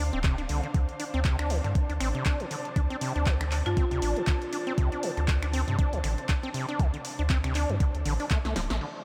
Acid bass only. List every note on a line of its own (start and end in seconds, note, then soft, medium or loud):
0.13 0.19 C4 loud
0.24 0.36 C3 loud
0.38 0.42 D4 medium
0.49 0.61 D3 medium
0.63 0.67 D3 medium
0.74 0.79 D3 medium
1.00 1.04 D4 medium
1.14 1.20 C4 loud
1.25 1.37 C3 loud
1.39 1.52 D4 medium
1.50 1.58 D3 medium
1.64 1.68 D3 medium
1.90 1.93 D4 medium
2.00 2.08 C4 loud
2.15 2.24 C3 medium
2.26 2.42 D4 medium
2.40 2.46 D3 medium
2.51 2.56 D3 medium
2.76 2.81 D4 medium
2.90 2.96 C4 loud
3.01 3.13 C3 loud
3.16 3.28 D4 medium
3.27 3.34 D3 medium
3.41 3.44 D3 medium
3.66 3.70 D4 medium
3.77 3.85 C4 loud
3.91 4.00 C3 loud
4.02 4.18 D4 medium
4.17 4.22 D3 medium
4.27 4.32 D3 medium
4.53 4.57 D4 medium
4.67 4.73 C4 loud
4.78 4.90 C3 loud
4.92 5.05 D4 medium
5.03 5.11 D3 medium
5.17 5.21 D3 medium
5.42 5.46 D4 medium
5.53 5.61 C4 loud
5.68 5.77 C3 loud
5.79 5.94 D4 medium
5.93 5.99 D3 medium
6.04 6.09 D3 medium
6.29 6.34 D4 medium
6.43 6.49 C4 loud
6.54 6.66 C3 loud
6.69 6.81 D4 medium
6.79 6.87 D3 medium
6.94 6.97 D3 medium
7.19 7.23 D4 medium
7.30 7.38 C4 loud
7.44 7.53 C3 loud
7.55 7.71 D4 medium
7.69 7.75 D3 medium
7.80 7.85 D3 medium
8.06 8.13 D3 loud
8.20 8.26 D4 medium
8.31 8.39 A3 medium
8.45 8.54 A3 medium
8.56 8.61 F3 loud
8.70 8.76 A3 medium
8.81 8.86 D3 medium